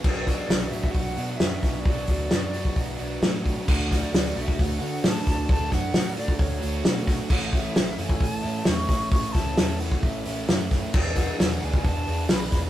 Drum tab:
CC |x---------------|----------------|x---------------|----------------|
HH |--o-o-o-o-o-o-o-|o-o-o-o-o-o-o-o-|--o-o-o-o-o-o-o-|o-o-o-o-o-o-o-o-|
SD |--o-o-------o-o-|----o-------o---|--o-o-------o-o-|--o-o-------o-o-|
BD |o-o----oo-----o-|o-o----oo-----o-|o-o----oo-----o-|o-o----oo-----o-|

CC |x---------------|----------------|x---------------|
HH |--o-o-o-o-o-o-o-|o-o-o-o-o-o-o-o-|--o-o-o-o-o-o-o-|
SD |----o-------o-o-|--o-o-------o-o-|--o-o-------o-o-|
BD |o-o----oo-----o-|o-o----oo-----o-|o-o----oo-----o-|